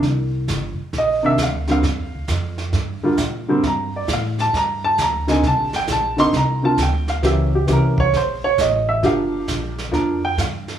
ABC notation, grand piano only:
X:1
M:4/4
L:1/8
Q:"Swing" 1/4=133
K:Gm
V:1 name="Grand piano"
z4 e =e f f- | f4 z4 | b d f a b a b _a | a g a c' b a g f |
=e G ^A ^c =c ^c _e =e | f3 z2 g f2 |]
V:2 name="Grand piano"
z4 z [C,E,B,D] z [D,G,B,C] | z4 z [D,G,B,F] z [D,G,B,C] | z6 z [D,B,CE] | z3 [D,B,CE] z [D,B,CF] z2 |
[=E,^A,^CG] z [E,A,CG] z4 z | [F,B,DG]3 z [F,B,DB] z3 |]